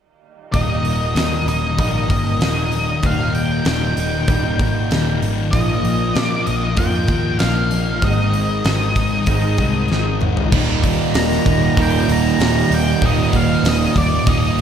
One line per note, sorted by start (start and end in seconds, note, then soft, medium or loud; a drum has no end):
0.52 0.82 D#1 medium
0.52 1.14 D#2 medium
0.52 1.76 D#2 medium
0.52 2.10 D#2 medium
0.52 1.47 A#2 medium
0.52 1.15 A#2 medium
0.52 1.15 D#3 medium
0.52 1.17 D#3 medium
0.52 1.17 G3 medium
0.52 1.17 A#3 loud
0.52 1.18 D#4 loud
0.52 1.47 D#5 medium
0.52 kick loud
0.52 open hi-hat medium
0.84 1.13 D#1 medium
0.84 open hi-hat medium
1.15 1.77 D#2 medium
1.15 1.44 D#2 medium
1.15 1.77 A#2 medium
1.15 1.77 D#3 medium
1.15 1.78 D#3 medium
1.15 1.77 G3 medium
1.15 3.66 A#3 medium
1.15 1.79 A#3 medium
1.15 snare loud
1.15 open hi-hat medium
1.19 1.79 D#4 medium
1.46 1.75 D#1 medium
1.46 3.97 D#4 medium
1.46 1.79 D#5 medium
1.46 open hi-hat medium
1.76 2.07 A#1 medium
1.76 2.40 D#2 medium
1.76 2.41 A#2 medium
1.76 2.10 A#2 medium
1.76 2.10 D#3 medium
1.76 2.07 D#3 loud
1.76 2.40 G3 medium
1.76 2.10 G3 medium
1.76 2.10 A#3 loud
1.76 2.08 D#4 loud
1.76 3.08 D#5 medium
1.76 kick loud
1.76 open hi-hat medium
2.08 2.38 G1 medium
2.08 2.42 A#2 medium
2.08 2.43 D#3 medium
2.08 2.71 D#3 medium
2.08 2.40 D#3 soft
2.08 2.41 G3 medium
2.08 2.42 A#3 medium
2.08 2.43 D#4 medium
2.08 kick medium
2.08 open hi-hat medium
2.39 2.99 D#1 medium
2.39 3.04 D#2 medium
2.39 3.04 A#2 medium
2.39 3.02 D#3 medium
2.39 3.98 G3 medium
2.39 3.03 G3 medium
2.39 3.04 A#3 medium
2.39 3.04 D#4 medium
2.39 snare loud
2.39 open hi-hat medium
2.44 3.05 D#3 medium
2.72 4.29 D#3 medium
2.72 open hi-hat medium
3.02 3.62 D#1 medium
3.02 3.96 D#2 medium
3.02 4.60 D#2 medium
3.02 3.65 D#2 medium
3.02 3.97 A#2 medium
3.02 3.67 A#2 loud
3.02 3.64 D#3 loud
3.02 3.65 G3 loud
3.02 3.67 A#3 loud
3.02 3.68 D#4 loud
3.02 kick loud
3.02 open hi-hat medium
3.06 3.67 D#3 medium
3.06 3.34 F5 loud
3.35 3.64 G5 medium
3.35 open hi-hat medium
3.65 3.94 D#1 medium
3.65 4.28 D#2 medium
3.65 4.29 A#2 medium
3.65 4.28 D#3 medium
3.65 4.31 D#3 medium
3.65 4.28 G3 medium
3.65 4.28 A#3 medium
3.65 4.30 D#4 medium
3.65 5.19 G5 medium
3.65 snare loud
3.65 open hi-hat medium
3.96 4.25 D#1 medium
3.96 6.16 D#4 medium
3.96 open hi-hat medium
4.27 4.57 D#1 medium
4.27 4.90 D#2 loud
4.27 4.91 D#2 medium
4.27 4.91 A#2 loud
4.27 4.62 A#2 medium
4.27 4.61 D#3 loud
4.27 4.61 G3 medium
4.27 4.91 G3 medium
4.27 4.60 A#3 medium
4.27 4.59 D#4 medium
4.27 kick loud
4.27 open hi-hat medium
4.32 4.60 D#3 medium
4.59 4.88 G#1 loud
4.59 5.22 D#3 medium
4.59 4.93 D#3 medium
4.59 4.88 D#3 medium
4.59 4.90 G3 medium
4.59 4.91 A#3 medium
4.59 4.93 D#4 medium
4.59 kick medium
4.59 open hi-hat medium
4.64 4.92 A#2 medium
4.90 5.20 D#1 medium
4.90 5.52 D#2 medium
4.90 5.52 A#2 medium
4.90 5.51 D#3 medium
4.90 5.52 G3 medium
4.90 5.54 G3 medium
4.90 5.52 A#3 medium
4.90 5.55 D#4 medium
4.90 snare medium
4.90 open hi-hat medium
4.94 5.53 D#3 medium
5.22 5.51 G#1 medium
5.22 5.54 D#3 medium
5.22 open hi-hat medium
5.51 5.82 A#1 loud
5.51 6.47 A#2 loud
5.51 6.14 A#2 medium
5.51 7.10 A#2 medium
5.51 6.14 F3 loud
5.51 6.15 F3 loud
5.51 6.15 A#3 loud
5.51 6.16 D#4 loud
5.51 6.17 D#5 medium
5.51 kick loud
5.51 open hi-hat medium
5.55 6.16 A#3 medium
5.55 6.16 F4 loud
5.84 6.13 A#1 medium
5.84 open hi-hat medium
6.15 6.75 A#2 medium
6.15 6.44 A#2 medium
6.15 6.77 F3 medium
6.15 6.76 F3 medium
6.15 6.78 A#3 medium
6.15 7.74 D#4 medium
6.15 6.79 D#4 medium
6.15 6.79 F4 medium
6.15 6.46 D5 medium
6.15 snare loud
6.15 open hi-hat medium
6.47 6.76 A#1 medium
6.47 8.03 F4 medium
6.47 6.79 D#5 medium
6.47 open hi-hat medium
6.76 7.06 F2 medium
6.76 7.38 A#2 medium
6.76 7.40 A#2 medium
6.76 7.10 F3 medium
6.76 7.39 F3 medium
6.76 7.38 A#3 medium
6.76 7.07 A#3 loud
6.76 7.11 A#3 loud
6.76 7.10 D#4 loud
6.76 7.39 G5 medium
6.76 kick loud
6.76 open hi-hat medium
6.81 7.08 F4 loud
7.08 7.37 D#2 medium
7.08 7.70 F3 medium
7.08 7.39 F3 medium
7.08 7.41 A#3 medium
7.08 7.42 D#4 medium
7.08 7.42 F4 medium
7.08 kick medium
7.08 open hi-hat medium
7.12 7.40 A#3 medium
7.39 8.00 A#1 medium
7.39 8.01 A#2 medium
7.39 8.01 F3 medium
7.39 8.03 A#3 medium
7.39 8.02 A#3 medium
7.39 8.04 D#4 medium
7.39 8.04 F5 medium
7.39 snare loud
7.39 open hi-hat medium
7.43 8.03 F4 medium
7.71 8.03 F3 medium
7.71 open hi-hat medium
8.02 8.61 G#1 medium
8.02 8.64 G#2 medium
8.02 8.96 G#2 medium
8.02 9.59 G#2 medium
8.02 8.64 D#3 loud
8.02 8.66 D#3 medium
8.02 8.65 G#3 loud
8.02 8.67 G#3 medium
8.02 8.66 C4 loud
8.02 8.67 D#4 loud
8.02 10.18 D#5 medium
8.02 kick loud
8.02 open hi-hat medium
8.33 open hi-hat medium
8.64 8.94 G#1 medium
8.64 9.27 G#2 medium
8.64 9.27 D#3 medium
8.64 9.28 D#3 medium
8.64 9.27 G#3 medium
8.64 9.29 G#3 medium
8.64 10.21 C4 medium
8.64 9.28 C4 medium
8.64 9.29 D#4 medium
8.64 snare loud
8.64 open hi-hat medium
8.95 9.25 G#1 medium
8.95 10.53 D#4 medium
8.95 kick medium
8.95 open hi-hat medium
9.26 9.56 G#1 medium
9.26 9.90 G#2 medium
9.26 9.89 G#2 medium
9.26 9.89 D#3 medium
9.26 9.61 D#3 medium
9.26 9.87 G#3 medium
9.26 9.61 G#3 medium
9.26 9.59 C4 loud
9.26 kick loud
9.26 open hi-hat medium
9.30 9.58 G#3 loud
9.30 9.58 D#4 loud
9.57 9.87 C2 medium
9.57 10.19 D#3 medium
9.57 9.92 G#3 medium
9.57 9.92 C4 medium
9.57 9.92 D#4 medium
9.57 kick medium
9.57 open hi-hat medium
9.62 9.90 D#3 medium
9.62 9.90 G#3 medium
9.88 10.19 G#1 medium
9.88 10.51 G#2 medium
9.88 10.51 D#3 medium
9.88 10.52 G#3 medium
9.88 snare medium
9.93 10.52 G#3 medium
9.93 10.52 C4 medium
9.93 10.53 D#4 medium
10.21 10.50 G#1 medium
10.21 10.52 D#3 medium
10.21 mid tom medium
10.37 floor tom medium
10.51 10.97 D#1 loud
10.51 14.61 D#2 medium
10.51 12.09 D#2 medium
10.51 11.15 D#2 medium
10.51 14.61 A#2 medium
10.51 10.85 A#2 medium
10.51 14.61 D#3 medium
10.51 10.83 D#3 loud
10.51 14.61 G3 medium
10.51 14.61 A#3 medium
10.51 14.61 D#4 medium
10.51 kick loud
10.51 crash loud
10.83 12.40 A#2 medium
10.83 11.16 A#2 medium
10.83 11.17 D#3 medium
10.83 kick medium
10.83 open hi-hat medium
11.14 11.38 D#1 medium
11.14 11.77 D#2 medium
11.14 11.48 A#2 medium
11.14 11.47 D#3 loud
11.14 12.38 G3 medium
11.14 11.80 A#5 loud
11.14 snare loud
11.14 open hi-hat loud
11.32 snare soft
11.46 11.69 D#1 medium
11.46 11.77 A#2 medium
11.46 12.08 D#3 medium
11.46 11.78 D#3 medium
11.46 kick medium
11.46 open hi-hat medium
11.77 12.00 D#1 medium
11.77 12.37 D#2 medium
11.77 12.08 A#2 loud
11.77 12.06 D#3 loud
11.77 kick loud
11.77 open hi-hat medium
11.82 12.09 G5 loud
12.08 12.31 D#1 loud
12.08 12.39 A#2 medium
12.08 12.39 D#3 medium
12.08 13.65 D#3 medium
12.08 open hi-hat medium
12.12 12.43 A#5 loud
12.38 12.62 D#1 medium
12.38 13.01 D#2 medium
12.38 12.72 A#2 medium
12.38 12.70 D#3 loud
12.38 13.63 G3 medium
12.38 snare loud
12.38 open hi-hat loud
12.46 12.75 A#5 loud
12.71 12.94 D#1 medium
12.71 13.01 A#2 medium
12.71 13.02 D#3 medium
12.71 14.61 D#4 medium
12.71 13.05 G5 medium
12.71 open hi-hat medium
13.02 13.25 D#1 loud
13.02 13.61 D#2 medium
13.02 14.58 D#2 medium
13.02 13.33 A#2 medium
13.02 13.31 D#3 loud
13.02 kick loud
13.02 open hi-hat medium
13.06 13.36 D#5 loud
13.32 13.56 D#1 medium
13.32 14.61 A#2 medium
13.32 13.63 A#2 medium
13.32 13.63 D#3 medium
13.32 kick medium
13.32 open hi-hat medium
13.36 13.67 F5 medium
13.62 13.87 D#1 loud
13.62 14.26 D#2 medium
13.62 13.96 A#2 medium
13.62 13.94 D#3 medium
13.62 14.61 G3 medium
13.62 snare loud
13.62 open hi-hat loud
13.68 13.97 D#5 medium
13.95 14.19 D#1 medium
13.95 14.27 A#2 medium
13.95 14.28 D#3 medium
13.95 14.57 D#3 medium
13.95 14.29 D5 medium
13.95 kick medium
13.95 open hi-hat medium
14.26 14.49 D#1 medium
14.26 14.61 D#2 loud
14.26 14.59 A#2 loud
14.26 14.57 D#3 loud
14.26 14.61 A#3 medium
14.26 14.61 D#5 medium
14.26 kick loud
14.26 open hi-hat medium
14.58 14.61 D#1 loud